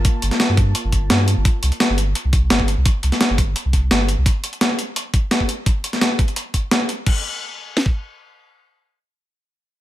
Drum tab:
CC |----------------|----------------|----------------|----------------|
HH |x-xxx-x-x-x-x-x-|x-xxx-x-x-x-x-x-|x-xxx-x-x-x-x-x-|x-xxx-x-x-x-x-x-|
SD |---oo-------o---|----o-------o---|---oo-------o---|----o-------o---|
BD |o-----o---o-----|o---------o--o--|o-----o---o-----|o---------o--o--|

CC |----------------|x---------------|----------------|
HH |x-xxx-xxx-x-x-x-|----------------|----------------|
SD |---oo-------o---|--------o-------|----------------|
BD |o-----o---o-----|o--------o------|----------------|